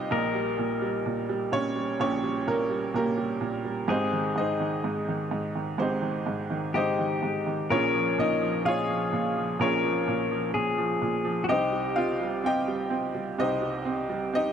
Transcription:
Already playing: upright piano C2 C3 G3 D#4 F4 G4 C5 D#5 F5, pedal steel guitar G4
0.11 upright piano A#1 A#2, pedal steel guitar A#4
0.35 upright piano G3
0.58 upright piano A#2
0.82 upright piano G3
1.06 upright piano A#2
1.29 upright piano G3
1.52 upright piano A#2 C#4 C#5
1.76 upright piano G3
2.00 upright piano A#1 A#2 C#4 G4 C#5
2.24 upright piano G3
2.47 upright piano A#2 A#3 A#4
2.70 upright piano G3
2.94 upright piano A#2 A#3 G4 A#4
3.18 upright piano G3
3.41 upright piano A#2
3.65 upright piano G3
3.88 upright piano G#1 G#2 C5, pedal steel guitar G#4
3.92 upright piano C4 D#4 G4
4.13 upright piano D#3
4.36 upright piano G#2 D#4 C5 D#5
4.60 upright piano D#3
4.84 upright piano G#2
5.09 upright piano D#3
5.31 upright piano G#2
5.56 upright piano D#3
5.78 upright piano G#1 G#2 C4 D#4 G4 C5
6.02 upright piano D#3
6.26 upright piano G#2
6.50 upright piano D#3
6.74 upright piano G#2 D#4 C5 D#5, pedal steel guitar G4
6.99 upright piano D#3
7.23 upright piano G#2
7.46 upright piano D#3
7.70 upright piano A#1 A#2 C#4 F4 G#4 C#5, pedal steel guitar A#4
7.94 upright piano F3
8.18 upright piano A#2 D#4 D#5
8.41 upright piano F3
8.65 upright piano A#2 F4 C#5 F5, pedal steel guitar G#4
8.89 upright piano F3
9.13 upright piano A#2
9.37 upright piano F3
9.59 upright piano A#1 A#2 F4 G#4 C#5, pedal steel guitar A#4
9.64 upright piano C#4
9.84 upright piano F3
10.08 upright piano A#2
10.31 upright piano F3
10.54 upright piano A#2, pedal steel guitar G#4
10.78 upright piano F3
11.02 upright piano A#2
11.25 upright piano F3
11.44 pedal steel guitar F#4
11.49 upright piano C2 C3 D#4 G4 C5 D#5, pedal steel guitar G4
11.72 upright piano G3
11.96 upright piano C4 F4 F5
12.21 upright piano G3
12.44 upright piano C4 G4 D#5 G5
12.68 upright piano G3
12.90 upright piano C4
13.15 upright piano G3
13.38 upright piano C2 C3 D#4 G4 C5 D#5
13.62 upright piano G3
13.85 upright piano C4
14.09 upright piano G3
14.33 upright piano C4 D#4 G4 D#5

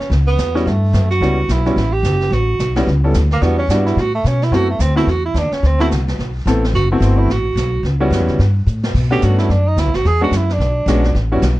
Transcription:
Already playing: tenor saxophone C#4
0.00 snare
0.10 upright bass C#2, brush sweep, snare
0.27 tenor saxophone B3
0.37 upright bass E2, snare, hi-hat pedal
0.55 grand piano G3 B3 C#4 E4 F#4, snare
0.66 upright bass G2, tenor saxophone A3, brush sweep, snare
0.93 upright bass F#2, snare, hi-hat pedal
1.11 tenor saxophone F#4, snare
1.21 upright bass C#2, grand piano G3 B3 C#4 E4 F#4, brush sweep, snare
1.49 upright bass B1, tenor saxophone E4, snare, hi-hat pedal
1.65 grand piano G3 B3 C#4 E4 F#4, snare
1.76 upright bass A1, brush sweep, snare
1.93 tenor saxophone G4
2.03 upright bass F#1, snare, hi-hat pedal
2.21 snare
2.30 upright bass A1, tenor saxophone F#4, brush sweep, snare
2.59 upright bass B1, snare, hi-hat pedal
2.76 grand piano G3 B3 C#4 E4 F#4, snare
2.87 upright bass C#2, brush sweep, snare
3.04 grand piano G3 B3 C#4 E4 A4
3.14 upright bass D2, snare, hi-hat pedal
3.31 tenor saxophone A#3, snare
3.41 upright bass E2, grand piano G3 B3 D4 E4 F#4, tenor saxophone B3, brush sweep, snare
3.58 tenor saxophone C#4
3.69 upright bass G2, grand piano G3 B3 D4 E4 F#4, tenor saxophone D4, snare, hi-hat pedal
3.86 tenor saxophone E4, snare
3.96 upright bass A2, tenor saxophone F#4, brush sweep, snare
4.15 tenor saxophone A3
4.24 upright bass B2, tenor saxophone C#4, snare, hi-hat pedal
4.42 tenor saxophone E4, snare
4.51 upright bass F#2, grand piano A3 B3 C4 E4 F#4, tenor saxophone F#4, brush sweep, snare
4.70 tenor saxophone A3
4.79 upright bass D2, tenor saxophone C4, snare, hi-hat pedal
4.96 grand piano A3 B3 C4 E4 F#4, tenor saxophone E4, snare
5.07 upright bass E2, tenor saxophone F#4, brush sweep, snare
5.25 tenor saxophone E4
5.34 upright bass D#2, snare, hi-hat pedal
5.39 tenor saxophone D4
5.51 tenor saxophone C#4, muted upright bass stroke, snare
5.63 upright bass D2, tenor saxophone C4, brush sweep, snare
5.80 grand piano A3 B3 C4 E4 F#4, tenor saxophone E4, snare
5.91 upright bass C2, snare, hi-hat pedal
6.08 snare
6.19 upright bass B1, brush sweep, snare
6.46 upright bass A1, grand piano A3 B3 C4 E4 A4, snare, hi-hat pedal
6.64 snare
6.73 upright bass F#1, tenor saxophone F#4, brush sweep, snare
6.91 tenor saxophone A3, grand piano A3 B3 C4 E4 F#4
7.00 upright bass G1, tenor saxophone C4, snare, hi-hat pedal
7.18 tenor saxophone E4
7.28 upright bass A1, tenor saxophone F#4, brush sweep, snare
7.55 upright bass B1, snare, hi-hat pedal
7.83 upright bass C#2, brush sweep, snare
8.00 grand piano G3 B3 C#4 E4 F#4
8.10 upright bass F#2, snare, hi-hat pedal
8.20 upright bass E2
8.28 upright bass C#2, snare
8.39 upright bass G2, brush sweep, snare
8.67 upright bass A2, hi-hat pedal
8.83 snare
8.94 upright bass B2, brush sweep, kick, snare, crash
9.10 grand piano A3 B3 C#4 D4 F#4, tenor saxophone G4
9.22 upright bass G2, tenor saxophone F#4, snare, hi-hat pedal
9.38 tenor saxophone E4, snare
9.49 upright bass F#2, tenor saxophone D4, brush sweep, snare
9.67 tenor saxophone D#4
9.77 upright bass D2, tenor saxophone E4, snare, hi-hat pedal
9.86 upright bass B1
9.94 upright bass A1, tenor saxophone F#4, snare
10.05 upright bass E2, tenor saxophone G#4, brush sweep, snare
10.21 grand piano G#3 B3 C#4 D4 F#4, tenor saxophone F#4
10.31 upright bass F#2, snare, hi-hat pedal
10.37 tenor saxophone E4
10.49 tenor saxophone D4, snare
10.58 upright bass B1, brush sweep, snare
10.86 upright bass A#1, grand piano G#3 B3 C#4 D4 F#4, snare, hi-hat pedal
11.04 snare
11.15 upright bass A1, brush sweep, snare
11.32 grand piano G3 B3 C#4 E4 F#4
11.42 upright bass B1, snare, hi-hat pedal

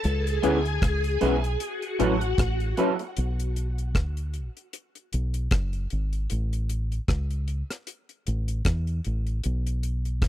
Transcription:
0.04 fingered electric bass C#2, string machine G#4 G#5, closed hi-hat
0.27 closed hi-hat
0.42 fingered electric bass D2, clean electric guitar G#3 B3 E4 G#4, tine electric piano C#4 E4 G#4 B4, closed hi-hat
0.65 closed hi-hat
0.82 fingered electric bass C#2, kick, cross-stick, closed hi-hat
1.04 closed hi-hat
1.21 fingered electric bass B1, clean electric guitar G#3 B3 E4 G#4, tine electric piano C#4 E4 G#4 B4, closed hi-hat
1.44 closed hi-hat
1.60 string machine F#4 F#5, closed hi-hat
1.82 closed hi-hat
1.99 fingered electric bass A1, clean electric guitar F#3 C#4 E4 A4, tine electric piano C#4 E4 F#4 B4, closed hi-hat
2.21 closed hi-hat
2.38 fingered electric bass A1, kick, cross-stick, closed hi-hat
2.60 closed hi-hat
2.77 clean electric guitar F#3 C#4 E4 A4, tine electric piano C#4 E4 F#4 B4, closed hi-hat
2.99 muted clean electric guitar stroke, closed hi-hat
3.17 fingered electric bass B1, closed hi-hat
3.39 closed hi-hat
3.56 closed hi-hat
3.78 closed hi-hat
3.95 fingered electric bass D2, kick, cross-stick, closed hi-hat
4.17 closed hi-hat
4.34 closed hi-hat
4.57 closed hi-hat
4.73 closed hi-hat
4.95 closed hi-hat
5.13 fingered electric bass B1, closed hi-hat
5.34 closed hi-hat
5.51 fingered electric bass F#1, kick, cross-stick, closed hi-hat
5.73 closed hi-hat
5.90 fingered electric bass G#1, closed hi-hat
6.13 closed hi-hat
6.30 fingered electric bass A1, closed hi-hat
6.53 closed hi-hat
6.69 closed hi-hat
6.92 closed hi-hat
7.08 fingered electric bass C#2, kick, cross-stick, closed hi-hat
7.31 closed hi-hat
7.48 closed hi-hat
7.70 cross-stick, closed hi-hat
7.87 closed hi-hat
8.09 closed hi-hat
8.27 fingered electric bass A1, closed hi-hat
8.48 closed hi-hat
8.65 fingered electric bass E2, kick, cross-stick, closed hi-hat
8.87 closed hi-hat
9.05 fingered electric bass A1, closed hi-hat
9.27 closed hi-hat
9.44 fingered electric bass B1, closed hi-hat
9.66 closed hi-hat
9.83 closed hi-hat
10.05 closed hi-hat
10.22 fingered electric bass D2, kick, cross-stick, closed hi-hat

